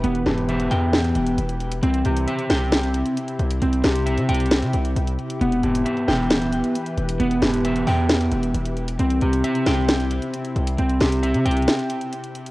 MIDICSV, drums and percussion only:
0, 0, Header, 1, 2, 480
1, 0, Start_track
1, 0, Tempo, 447761
1, 39, Time_signature, 4, 2, 24, 8
1, 13410, End_track
2, 0, Start_track
2, 0, Title_t, "Drums"
2, 39, Note_on_c, 9, 42, 65
2, 146, Note_off_c, 9, 42, 0
2, 157, Note_on_c, 9, 42, 51
2, 264, Note_off_c, 9, 42, 0
2, 275, Note_on_c, 9, 42, 56
2, 279, Note_on_c, 9, 38, 107
2, 382, Note_off_c, 9, 42, 0
2, 386, Note_off_c, 9, 38, 0
2, 400, Note_on_c, 9, 42, 92
2, 507, Note_off_c, 9, 42, 0
2, 519, Note_on_c, 9, 42, 85
2, 626, Note_off_c, 9, 42, 0
2, 638, Note_on_c, 9, 42, 51
2, 745, Note_off_c, 9, 42, 0
2, 758, Note_on_c, 9, 46, 78
2, 865, Note_off_c, 9, 46, 0
2, 997, Note_on_c, 9, 42, 78
2, 999, Note_on_c, 9, 38, 124
2, 1104, Note_off_c, 9, 42, 0
2, 1107, Note_off_c, 9, 38, 0
2, 1118, Note_on_c, 9, 42, 56
2, 1225, Note_off_c, 9, 42, 0
2, 1235, Note_on_c, 9, 42, 73
2, 1342, Note_off_c, 9, 42, 0
2, 1357, Note_on_c, 9, 42, 64
2, 1464, Note_off_c, 9, 42, 0
2, 1480, Note_on_c, 9, 42, 89
2, 1587, Note_off_c, 9, 42, 0
2, 1598, Note_on_c, 9, 42, 58
2, 1705, Note_off_c, 9, 42, 0
2, 1719, Note_on_c, 9, 42, 49
2, 1826, Note_off_c, 9, 42, 0
2, 1839, Note_on_c, 9, 42, 86
2, 1946, Note_off_c, 9, 42, 0
2, 1959, Note_on_c, 9, 42, 66
2, 2066, Note_off_c, 9, 42, 0
2, 2078, Note_on_c, 9, 42, 54
2, 2185, Note_off_c, 9, 42, 0
2, 2195, Note_on_c, 9, 42, 58
2, 2302, Note_off_c, 9, 42, 0
2, 2321, Note_on_c, 9, 42, 88
2, 2428, Note_off_c, 9, 42, 0
2, 2440, Note_on_c, 9, 42, 82
2, 2547, Note_off_c, 9, 42, 0
2, 2558, Note_on_c, 9, 42, 54
2, 2665, Note_off_c, 9, 42, 0
2, 2679, Note_on_c, 9, 42, 73
2, 2680, Note_on_c, 9, 38, 95
2, 2786, Note_off_c, 9, 42, 0
2, 2787, Note_off_c, 9, 38, 0
2, 2918, Note_on_c, 9, 42, 78
2, 2920, Note_on_c, 9, 38, 127
2, 3025, Note_off_c, 9, 42, 0
2, 3027, Note_off_c, 9, 38, 0
2, 3039, Note_on_c, 9, 42, 57
2, 3146, Note_off_c, 9, 42, 0
2, 3155, Note_on_c, 9, 42, 75
2, 3262, Note_off_c, 9, 42, 0
2, 3277, Note_on_c, 9, 42, 61
2, 3384, Note_off_c, 9, 42, 0
2, 3401, Note_on_c, 9, 42, 87
2, 3508, Note_off_c, 9, 42, 0
2, 3518, Note_on_c, 9, 42, 61
2, 3625, Note_off_c, 9, 42, 0
2, 3639, Note_on_c, 9, 42, 46
2, 3746, Note_off_c, 9, 42, 0
2, 3759, Note_on_c, 9, 42, 80
2, 3866, Note_off_c, 9, 42, 0
2, 3879, Note_on_c, 9, 42, 66
2, 3986, Note_off_c, 9, 42, 0
2, 3997, Note_on_c, 9, 42, 52
2, 4105, Note_off_c, 9, 42, 0
2, 4114, Note_on_c, 9, 42, 58
2, 4118, Note_on_c, 9, 38, 105
2, 4221, Note_off_c, 9, 42, 0
2, 4226, Note_off_c, 9, 38, 0
2, 4241, Note_on_c, 9, 42, 87
2, 4348, Note_off_c, 9, 42, 0
2, 4360, Note_on_c, 9, 42, 82
2, 4467, Note_off_c, 9, 42, 0
2, 4477, Note_on_c, 9, 42, 52
2, 4585, Note_off_c, 9, 42, 0
2, 4598, Note_on_c, 9, 46, 75
2, 4599, Note_on_c, 9, 42, 75
2, 4659, Note_off_c, 9, 42, 0
2, 4659, Note_on_c, 9, 42, 63
2, 4706, Note_off_c, 9, 46, 0
2, 4719, Note_off_c, 9, 42, 0
2, 4719, Note_on_c, 9, 42, 53
2, 4779, Note_off_c, 9, 42, 0
2, 4779, Note_on_c, 9, 42, 42
2, 4838, Note_off_c, 9, 42, 0
2, 4838, Note_on_c, 9, 42, 78
2, 4840, Note_on_c, 9, 38, 123
2, 4945, Note_off_c, 9, 42, 0
2, 4947, Note_off_c, 9, 38, 0
2, 4959, Note_on_c, 9, 42, 56
2, 5066, Note_off_c, 9, 42, 0
2, 5075, Note_on_c, 9, 42, 75
2, 5182, Note_off_c, 9, 42, 0
2, 5198, Note_on_c, 9, 42, 62
2, 5305, Note_off_c, 9, 42, 0
2, 5321, Note_on_c, 9, 42, 89
2, 5428, Note_off_c, 9, 42, 0
2, 5438, Note_on_c, 9, 42, 59
2, 5546, Note_off_c, 9, 42, 0
2, 5560, Note_on_c, 9, 42, 66
2, 5667, Note_off_c, 9, 42, 0
2, 5680, Note_on_c, 9, 42, 69
2, 5787, Note_off_c, 9, 42, 0
2, 5800, Note_on_c, 9, 42, 64
2, 5907, Note_off_c, 9, 42, 0
2, 5918, Note_on_c, 9, 42, 51
2, 6025, Note_off_c, 9, 42, 0
2, 6036, Note_on_c, 9, 42, 59
2, 6143, Note_off_c, 9, 42, 0
2, 6162, Note_on_c, 9, 42, 89
2, 6269, Note_off_c, 9, 42, 0
2, 6280, Note_on_c, 9, 42, 84
2, 6387, Note_off_c, 9, 42, 0
2, 6398, Note_on_c, 9, 42, 51
2, 6505, Note_off_c, 9, 42, 0
2, 6518, Note_on_c, 9, 42, 73
2, 6519, Note_on_c, 9, 38, 95
2, 6626, Note_off_c, 9, 38, 0
2, 6626, Note_off_c, 9, 42, 0
2, 6757, Note_on_c, 9, 42, 81
2, 6759, Note_on_c, 9, 38, 123
2, 6865, Note_off_c, 9, 42, 0
2, 6867, Note_off_c, 9, 38, 0
2, 6879, Note_on_c, 9, 42, 56
2, 6986, Note_off_c, 9, 42, 0
2, 6995, Note_on_c, 9, 42, 75
2, 7102, Note_off_c, 9, 42, 0
2, 7117, Note_on_c, 9, 42, 62
2, 7224, Note_off_c, 9, 42, 0
2, 7240, Note_on_c, 9, 42, 90
2, 7347, Note_off_c, 9, 42, 0
2, 7357, Note_on_c, 9, 42, 60
2, 7465, Note_off_c, 9, 42, 0
2, 7479, Note_on_c, 9, 42, 48
2, 7586, Note_off_c, 9, 42, 0
2, 7599, Note_on_c, 9, 42, 84
2, 7706, Note_off_c, 9, 42, 0
2, 7719, Note_on_c, 9, 42, 68
2, 7826, Note_off_c, 9, 42, 0
2, 7838, Note_on_c, 9, 42, 52
2, 7945, Note_off_c, 9, 42, 0
2, 7956, Note_on_c, 9, 42, 57
2, 7960, Note_on_c, 9, 38, 103
2, 8063, Note_off_c, 9, 42, 0
2, 8067, Note_off_c, 9, 38, 0
2, 8082, Note_on_c, 9, 42, 85
2, 8189, Note_off_c, 9, 42, 0
2, 8200, Note_on_c, 9, 42, 82
2, 8308, Note_off_c, 9, 42, 0
2, 8318, Note_on_c, 9, 42, 54
2, 8425, Note_off_c, 9, 42, 0
2, 8439, Note_on_c, 9, 46, 80
2, 8546, Note_off_c, 9, 46, 0
2, 8678, Note_on_c, 9, 42, 80
2, 8680, Note_on_c, 9, 38, 118
2, 8785, Note_off_c, 9, 42, 0
2, 8787, Note_off_c, 9, 38, 0
2, 8799, Note_on_c, 9, 42, 58
2, 8907, Note_off_c, 9, 42, 0
2, 8916, Note_on_c, 9, 42, 78
2, 9023, Note_off_c, 9, 42, 0
2, 9038, Note_on_c, 9, 42, 61
2, 9145, Note_off_c, 9, 42, 0
2, 9160, Note_on_c, 9, 42, 84
2, 9268, Note_off_c, 9, 42, 0
2, 9278, Note_on_c, 9, 42, 59
2, 9385, Note_off_c, 9, 42, 0
2, 9399, Note_on_c, 9, 42, 48
2, 9506, Note_off_c, 9, 42, 0
2, 9519, Note_on_c, 9, 42, 84
2, 9626, Note_off_c, 9, 42, 0
2, 9639, Note_on_c, 9, 42, 67
2, 9746, Note_off_c, 9, 42, 0
2, 9758, Note_on_c, 9, 42, 53
2, 9865, Note_off_c, 9, 42, 0
2, 9875, Note_on_c, 9, 42, 57
2, 9983, Note_off_c, 9, 42, 0
2, 10001, Note_on_c, 9, 42, 88
2, 10108, Note_off_c, 9, 42, 0
2, 10120, Note_on_c, 9, 42, 84
2, 10227, Note_off_c, 9, 42, 0
2, 10238, Note_on_c, 9, 42, 51
2, 10345, Note_off_c, 9, 42, 0
2, 10358, Note_on_c, 9, 42, 70
2, 10359, Note_on_c, 9, 38, 92
2, 10465, Note_off_c, 9, 42, 0
2, 10466, Note_off_c, 9, 38, 0
2, 10597, Note_on_c, 9, 42, 80
2, 10599, Note_on_c, 9, 38, 123
2, 10704, Note_off_c, 9, 42, 0
2, 10706, Note_off_c, 9, 38, 0
2, 10719, Note_on_c, 9, 42, 57
2, 10826, Note_off_c, 9, 42, 0
2, 10836, Note_on_c, 9, 42, 79
2, 10943, Note_off_c, 9, 42, 0
2, 10957, Note_on_c, 9, 42, 62
2, 11064, Note_off_c, 9, 42, 0
2, 11080, Note_on_c, 9, 42, 85
2, 11187, Note_off_c, 9, 42, 0
2, 11198, Note_on_c, 9, 42, 60
2, 11305, Note_off_c, 9, 42, 0
2, 11319, Note_on_c, 9, 42, 47
2, 11426, Note_off_c, 9, 42, 0
2, 11439, Note_on_c, 9, 42, 85
2, 11546, Note_off_c, 9, 42, 0
2, 11559, Note_on_c, 9, 42, 66
2, 11666, Note_off_c, 9, 42, 0
2, 11677, Note_on_c, 9, 42, 54
2, 11784, Note_off_c, 9, 42, 0
2, 11795, Note_on_c, 9, 42, 58
2, 11799, Note_on_c, 9, 38, 107
2, 11902, Note_off_c, 9, 42, 0
2, 11906, Note_off_c, 9, 38, 0
2, 11921, Note_on_c, 9, 42, 88
2, 12028, Note_off_c, 9, 42, 0
2, 12040, Note_on_c, 9, 42, 84
2, 12147, Note_off_c, 9, 42, 0
2, 12158, Note_on_c, 9, 42, 52
2, 12265, Note_off_c, 9, 42, 0
2, 12279, Note_on_c, 9, 46, 80
2, 12280, Note_on_c, 9, 42, 76
2, 12339, Note_off_c, 9, 42, 0
2, 12339, Note_on_c, 9, 42, 61
2, 12387, Note_off_c, 9, 46, 0
2, 12400, Note_off_c, 9, 42, 0
2, 12400, Note_on_c, 9, 42, 52
2, 12460, Note_off_c, 9, 42, 0
2, 12460, Note_on_c, 9, 42, 42
2, 12518, Note_off_c, 9, 42, 0
2, 12518, Note_on_c, 9, 42, 77
2, 12521, Note_on_c, 9, 38, 124
2, 12626, Note_off_c, 9, 42, 0
2, 12628, Note_off_c, 9, 38, 0
2, 12640, Note_on_c, 9, 42, 57
2, 12747, Note_off_c, 9, 42, 0
2, 12756, Note_on_c, 9, 42, 76
2, 12863, Note_off_c, 9, 42, 0
2, 12878, Note_on_c, 9, 42, 61
2, 12986, Note_off_c, 9, 42, 0
2, 13001, Note_on_c, 9, 42, 88
2, 13108, Note_off_c, 9, 42, 0
2, 13119, Note_on_c, 9, 42, 60
2, 13226, Note_off_c, 9, 42, 0
2, 13240, Note_on_c, 9, 42, 63
2, 13347, Note_off_c, 9, 42, 0
2, 13360, Note_on_c, 9, 42, 66
2, 13410, Note_off_c, 9, 42, 0
2, 13410, End_track
0, 0, End_of_file